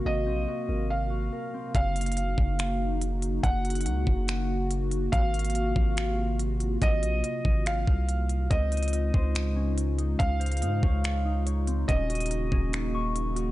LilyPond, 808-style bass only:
\new Staff \with { instrumentName = "808-style bass" } { \clef bass \time 4/4 \key ges \lydian \tempo 4 = 142 aes,,8 bes,,8 r8 aes,,4. r4 | ges,,4. ges,,2~ ges,,8 | ges,,4 des,8 ges,,2~ ges,,8 | aes,,4. aes,,2~ aes,,8 |
aes,,8 bes,,8 r8 aes,,4 c,4. | des,4. des,2~ des,8 | des,4 aes,8 des,2~ des,8 | ees,,4. ees,,2~ ees,,8 | }